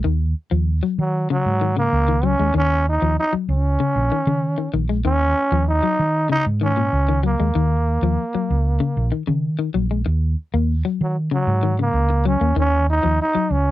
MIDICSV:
0, 0, Header, 1, 6, 480
1, 0, Start_track
1, 0, Key_signature, -6, "minor"
1, 0, Tempo, 626305
1, 40, Time_signature, 4, 2, 24, 8
1, 10509, End_track
2, 0, Start_track
2, 0, Title_t, "Trombone"
2, 0, Program_c, 0, 57
2, 767, Note_on_c, 0, 54, 70
2, 985, Note_off_c, 0, 54, 0
2, 1004, Note_on_c, 0, 54, 88
2, 1337, Note_off_c, 0, 54, 0
2, 1369, Note_on_c, 0, 58, 91
2, 1728, Note_on_c, 0, 61, 92
2, 1740, Note_off_c, 0, 58, 0
2, 1961, Note_off_c, 0, 61, 0
2, 1975, Note_on_c, 0, 61, 105
2, 2188, Note_off_c, 0, 61, 0
2, 2216, Note_on_c, 0, 63, 91
2, 2428, Note_off_c, 0, 63, 0
2, 2451, Note_on_c, 0, 63, 97
2, 2555, Note_off_c, 0, 63, 0
2, 2687, Note_on_c, 0, 61, 84
2, 3607, Note_off_c, 0, 61, 0
2, 3875, Note_on_c, 0, 61, 101
2, 4321, Note_off_c, 0, 61, 0
2, 4361, Note_on_c, 0, 63, 100
2, 4804, Note_off_c, 0, 63, 0
2, 4841, Note_on_c, 0, 63, 106
2, 4946, Note_off_c, 0, 63, 0
2, 5082, Note_on_c, 0, 61, 93
2, 5524, Note_off_c, 0, 61, 0
2, 5568, Note_on_c, 0, 58, 81
2, 6968, Note_off_c, 0, 58, 0
2, 8449, Note_on_c, 0, 54, 65
2, 8553, Note_off_c, 0, 54, 0
2, 8685, Note_on_c, 0, 54, 93
2, 9016, Note_off_c, 0, 54, 0
2, 9057, Note_on_c, 0, 58, 88
2, 9380, Note_off_c, 0, 58, 0
2, 9406, Note_on_c, 0, 61, 85
2, 9624, Note_off_c, 0, 61, 0
2, 9649, Note_on_c, 0, 61, 98
2, 9865, Note_off_c, 0, 61, 0
2, 9887, Note_on_c, 0, 63, 92
2, 10104, Note_off_c, 0, 63, 0
2, 10129, Note_on_c, 0, 63, 95
2, 10362, Note_on_c, 0, 61, 81
2, 10374, Note_off_c, 0, 63, 0
2, 10509, Note_off_c, 0, 61, 0
2, 10509, End_track
3, 0, Start_track
3, 0, Title_t, "Clean electric guitar"
3, 0, Program_c, 1, 27
3, 33, Note_on_c, 1, 51, 91
3, 189, Note_off_c, 1, 51, 0
3, 392, Note_on_c, 1, 53, 69
3, 549, Note_off_c, 1, 53, 0
3, 635, Note_on_c, 1, 54, 72
3, 791, Note_off_c, 1, 54, 0
3, 999, Note_on_c, 1, 49, 91
3, 1152, Note_off_c, 1, 49, 0
3, 1235, Note_on_c, 1, 51, 66
3, 1314, Note_off_c, 1, 51, 0
3, 1353, Note_on_c, 1, 49, 67
3, 1509, Note_off_c, 1, 49, 0
3, 1595, Note_on_c, 1, 51, 67
3, 1672, Note_off_c, 1, 51, 0
3, 1711, Note_on_c, 1, 54, 67
3, 1791, Note_off_c, 1, 54, 0
3, 1836, Note_on_c, 1, 56, 63
3, 1912, Note_off_c, 1, 56, 0
3, 1946, Note_on_c, 1, 51, 91
3, 2103, Note_off_c, 1, 51, 0
3, 2315, Note_on_c, 1, 53, 66
3, 2470, Note_off_c, 1, 53, 0
3, 2550, Note_on_c, 1, 54, 70
3, 2706, Note_off_c, 1, 54, 0
3, 2913, Note_on_c, 1, 49, 83
3, 3067, Note_off_c, 1, 49, 0
3, 3156, Note_on_c, 1, 51, 67
3, 3233, Note_off_c, 1, 51, 0
3, 3275, Note_on_c, 1, 49, 68
3, 3429, Note_off_c, 1, 49, 0
3, 3509, Note_on_c, 1, 51, 70
3, 3586, Note_off_c, 1, 51, 0
3, 3630, Note_on_c, 1, 51, 75
3, 3709, Note_off_c, 1, 51, 0
3, 3751, Note_on_c, 1, 56, 63
3, 3827, Note_off_c, 1, 56, 0
3, 3869, Note_on_c, 1, 51, 88
3, 4024, Note_off_c, 1, 51, 0
3, 4232, Note_on_c, 1, 53, 70
3, 4387, Note_off_c, 1, 53, 0
3, 4468, Note_on_c, 1, 54, 67
3, 4624, Note_off_c, 1, 54, 0
3, 4824, Note_on_c, 1, 49, 82
3, 4980, Note_off_c, 1, 49, 0
3, 5067, Note_on_c, 1, 51, 69
3, 5146, Note_off_c, 1, 51, 0
3, 5190, Note_on_c, 1, 46, 71
3, 5345, Note_off_c, 1, 46, 0
3, 5430, Note_on_c, 1, 51, 67
3, 5506, Note_off_c, 1, 51, 0
3, 5544, Note_on_c, 1, 54, 74
3, 5624, Note_off_c, 1, 54, 0
3, 5669, Note_on_c, 1, 56, 61
3, 5745, Note_off_c, 1, 56, 0
3, 5788, Note_on_c, 1, 51, 88
3, 5943, Note_off_c, 1, 51, 0
3, 6154, Note_on_c, 1, 53, 70
3, 6308, Note_off_c, 1, 53, 0
3, 6396, Note_on_c, 1, 54, 66
3, 6549, Note_off_c, 1, 54, 0
3, 6746, Note_on_c, 1, 49, 89
3, 6901, Note_off_c, 1, 49, 0
3, 6988, Note_on_c, 1, 51, 68
3, 7067, Note_off_c, 1, 51, 0
3, 7108, Note_on_c, 1, 49, 68
3, 7264, Note_off_c, 1, 49, 0
3, 7347, Note_on_c, 1, 51, 75
3, 7425, Note_off_c, 1, 51, 0
3, 7467, Note_on_c, 1, 54, 74
3, 7547, Note_off_c, 1, 54, 0
3, 7594, Note_on_c, 1, 56, 63
3, 7669, Note_off_c, 1, 56, 0
3, 8076, Note_on_c, 1, 58, 73
3, 8230, Note_off_c, 1, 58, 0
3, 8315, Note_on_c, 1, 54, 71
3, 8469, Note_off_c, 1, 54, 0
3, 8671, Note_on_c, 1, 49, 86
3, 8826, Note_off_c, 1, 49, 0
3, 8912, Note_on_c, 1, 51, 74
3, 8991, Note_off_c, 1, 51, 0
3, 9038, Note_on_c, 1, 49, 69
3, 9192, Note_off_c, 1, 49, 0
3, 9392, Note_on_c, 1, 54, 75
3, 9471, Note_off_c, 1, 54, 0
3, 9512, Note_on_c, 1, 58, 59
3, 9589, Note_off_c, 1, 58, 0
3, 9629, Note_on_c, 1, 51, 90
3, 9785, Note_off_c, 1, 51, 0
3, 9988, Note_on_c, 1, 53, 64
3, 10146, Note_off_c, 1, 53, 0
3, 10229, Note_on_c, 1, 54, 72
3, 10387, Note_off_c, 1, 54, 0
3, 10509, End_track
4, 0, Start_track
4, 0, Title_t, "Fingered electric bass"
4, 0, Program_c, 2, 33
4, 38, Note_on_c, 2, 39, 89
4, 251, Note_off_c, 2, 39, 0
4, 397, Note_on_c, 2, 39, 90
4, 611, Note_off_c, 2, 39, 0
4, 755, Note_on_c, 2, 51, 84
4, 968, Note_off_c, 2, 51, 0
4, 1116, Note_on_c, 2, 44, 80
4, 1433, Note_off_c, 2, 44, 0
4, 1476, Note_on_c, 2, 37, 89
4, 1796, Note_off_c, 2, 37, 0
4, 1836, Note_on_c, 2, 39, 79
4, 1940, Note_off_c, 2, 39, 0
4, 1953, Note_on_c, 2, 39, 86
4, 2274, Note_off_c, 2, 39, 0
4, 2316, Note_on_c, 2, 39, 82
4, 2420, Note_off_c, 2, 39, 0
4, 2671, Note_on_c, 2, 37, 84
4, 2884, Note_off_c, 2, 37, 0
4, 3032, Note_on_c, 2, 34, 76
4, 3137, Note_off_c, 2, 34, 0
4, 3272, Note_on_c, 2, 51, 89
4, 3485, Note_off_c, 2, 51, 0
4, 3630, Note_on_c, 2, 34, 93
4, 3843, Note_off_c, 2, 34, 0
4, 3868, Note_on_c, 2, 39, 81
4, 4081, Note_off_c, 2, 39, 0
4, 4228, Note_on_c, 2, 39, 85
4, 4442, Note_off_c, 2, 39, 0
4, 4594, Note_on_c, 2, 51, 81
4, 4804, Note_off_c, 2, 51, 0
4, 4953, Note_on_c, 2, 44, 75
4, 5269, Note_off_c, 2, 44, 0
4, 5308, Note_on_c, 2, 37, 82
4, 5629, Note_off_c, 2, 37, 0
4, 5672, Note_on_c, 2, 39, 78
4, 5776, Note_off_c, 2, 39, 0
4, 5786, Note_on_c, 2, 39, 78
4, 6108, Note_off_c, 2, 39, 0
4, 6147, Note_on_c, 2, 39, 78
4, 6253, Note_off_c, 2, 39, 0
4, 6517, Note_on_c, 2, 37, 92
4, 6726, Note_off_c, 2, 37, 0
4, 6872, Note_on_c, 2, 34, 80
4, 6976, Note_off_c, 2, 34, 0
4, 7113, Note_on_c, 2, 51, 92
4, 7325, Note_off_c, 2, 51, 0
4, 7470, Note_on_c, 2, 34, 94
4, 7682, Note_off_c, 2, 34, 0
4, 7714, Note_on_c, 2, 39, 86
4, 7925, Note_off_c, 2, 39, 0
4, 8077, Note_on_c, 2, 39, 90
4, 8288, Note_off_c, 2, 39, 0
4, 8436, Note_on_c, 2, 51, 86
4, 8647, Note_off_c, 2, 51, 0
4, 8790, Note_on_c, 2, 44, 82
4, 9109, Note_off_c, 2, 44, 0
4, 9147, Note_on_c, 2, 37, 92
4, 9471, Note_off_c, 2, 37, 0
4, 9511, Note_on_c, 2, 39, 81
4, 9618, Note_off_c, 2, 39, 0
4, 9629, Note_on_c, 2, 39, 88
4, 9953, Note_off_c, 2, 39, 0
4, 9997, Note_on_c, 2, 39, 73
4, 10101, Note_off_c, 2, 39, 0
4, 10350, Note_on_c, 2, 37, 88
4, 10509, Note_off_c, 2, 37, 0
4, 10509, End_track
5, 0, Start_track
5, 0, Title_t, "Muted clean electric guitar strokes"
5, 7709, Note_on_c, 9, 29, 87
5, 7785, Note_off_c, 9, 29, 0
5, 9274, Note_on_c, 9, 29, 69
5, 9351, Note_off_c, 9, 29, 0
5, 10509, End_track
6, 0, Start_track
6, 0, Title_t, "Muted fingered electric bass strokes"
6, 2559, Note_on_c, 9, 29, 34
6, 2636, Note_off_c, 9, 29, 0
6, 6395, Note_on_c, 9, 29, 36
6, 6472, Note_off_c, 9, 29, 0
6, 10236, Note_on_c, 9, 29, 33
6, 10313, Note_off_c, 9, 29, 0
6, 10509, End_track
0, 0, End_of_file